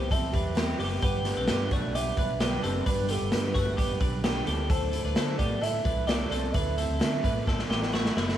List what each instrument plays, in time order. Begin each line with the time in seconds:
Already playing: fingered electric bass C2, clean electric guitar B3 G4, soft synth lead C5
0.10 twelve-string acoustic guitar E3 G3 C4 G4, clean electric guitar C4 A4, soft synth lead E5, kick, closed hi-hat
0.32 fingered electric bass E2, twelve-string acoustic guitar G3 C4 G4, clean electric guitar D4 B4, kick, closed hi-hat
0.55 twelve-string acoustic guitar C3 E3 G3 C4 G4, clean electric guitar C4 G4, snare, closed hi-hat
0.78 fingered electric bass F#1, twelve-string acoustic guitar G3 C4 G4, clean electric guitar B3 G4, open hi-hat
1.02 fingered electric bass G1, twelve-string acoustic guitar G2 D3 G3 B3 D4 G4, clean electric guitar B3 G4, soft synth lead B4, kick, closed hi-hat
1.24 twelve-string acoustic guitar G3 B3 D4 G4, snare, closed hi-hat
1.37 fingered electric bass B1, clean electric guitar C4 A4
1.47 twelve-string acoustic guitar G2 D3 G3 B3 D4 G4, fingered electric bass G2, clean electric guitar B3 G4, snare, closed hi-hat
1.71 fingered electric bass B1, twelve-string acoustic guitar G3 B3 D4 G4, clean electric guitar A3 F#4, soft synth lead D5, kick, closed hi-hat
1.94 twelve-string acoustic guitar G3 B3 D4 G4, clean electric guitar B3 G4, soft synth lead E5, closed hi-hat
2.17 fingered electric bass B1, twelve-string acoustic guitar G3 B3 D4 G4, clean electric guitar D4 B4, kick, closed hi-hat
2.40 twelve-string acoustic guitar G2 D3 G3 B3 D4 G4, clean electric guitar B3 G4, soft synth lead B4, snare, closed hi-hat
2.63 fingered electric bass F#1, twelve-string acoustic guitar G3 B3 D4 G4, clean electric guitar C4 A4, closed hi-hat
2.86 fingered electric bass G1, twelve-string acoustic guitar G2 D3 G3 B3 D4 G4, clean electric guitar D4 B4, soft synth lead B4, kick, closed hi-hat
3.09 twelve-string acoustic guitar G3 B3 D4 G4, clean electric guitar B3 G4, soft synth lead A4, closed hi-hat
3.21 fingered electric bass G1
3.32 twelve-string acoustic guitar G2 D3 G3 B3 D4 G4, fingered electric bass G2, soft synth lead B4, snare, closed hi-hat
3.54 fingered electric bass G1, twelve-string acoustic guitar G3 B3 D4 G4, clean electric guitar A3 F#4, kick, closed hi-hat
3.77 twelve-string acoustic guitar G3 B3 D4 G4, clean electric guitar B3 G4, soft synth lead B4, kick, closed hi-hat
4.00 fingered electric bass B1, twelve-string acoustic guitar G3 B3 D4 G4, clean electric guitar D4 B4, kick, closed hi-hat
4.24 twelve-string acoustic guitar G2 D3 G3 B3 D4 G4, clean electric guitar B3 G4, snare, closed hi-hat
4.46 fingered electric bass D2, twelve-string acoustic guitar A3 E4 A4, clean electric guitar D4 G4, closed hi-hat
4.69 twelve-string acoustic guitar D3 A3 E4 A4, clean electric guitar D4 A4, soft synth lead C5, kick, closed hi-hat
4.92 twelve-string acoustic guitar A3 E4 A4, closed hi-hat
5.04 fingered electric bass D2, clean electric guitar D4 B4
5.15 fingered electric bass D3, twelve-string acoustic guitar D3 A3 E4 A4, clean electric guitar D4 A4, snare, closed hi-hat
5.38 fingered electric bass A2, twelve-string acoustic guitar A3 E4 A4, clean electric guitar B3 G4, soft synth lead D5, kick, closed hi-hat
5.61 twelve-string acoustic guitar D3 A3 E4 A4, clean electric guitar D4 A4, soft synth lead E5, closed hi-hat
5.84 fingered electric bass C2, twelve-string acoustic guitar A3 E4 A4, clean electric guitar D4 B4, kick, closed hi-hat
6.07 twelve-string acoustic guitar D3 A3 E4 A4, clean electric guitar D4 G4, soft synth lead D5, snare, closed hi-hat
6.29 fingered electric bass C2, twelve-string acoustic guitar A3 E4 A4, clean electric guitar C4 A4, soft synth lead D5, closed hi-hat
6.52 fingered electric bass D2, twelve-string acoustic guitar D3 A3 E4 A4, clean electric guitar B4, soft synth lead E5, kick, closed hi-hat
6.56 clean electric guitar D4
6.77 twelve-string acoustic guitar A3 E4 A4, clean electric guitar C4 A4, closed hi-hat
6.89 fingered electric bass D2
6.99 twelve-string acoustic guitar D3 A3 E4 A4, fingered electric bass D3, snare, closed hi-hat
7.22 fingered electric bass A2, twelve-string acoustic guitar A3 E4 A4, clean electric guitar D4 B4, kick, closed hi-hat
7.45 twelve-string acoustic guitar D3 A3 E4 A4, clean electric guitar D4 A4, kick, snare
7.59 snare
7.69 fingered electric bass A1, twelve-string acoustic guitar A3 E4 A4, clean electric guitar B3 G4, snare
7.82 snare
7.92 twelve-string acoustic guitar D3 A3 E4 A4, clean electric guitar A3 F#4, snare
8.05 snare
8.16 fingered electric bass F#1, clean electric guitar G3 E4, twelve-string acoustic guitar A3 E4 A4, snare
8.29 snare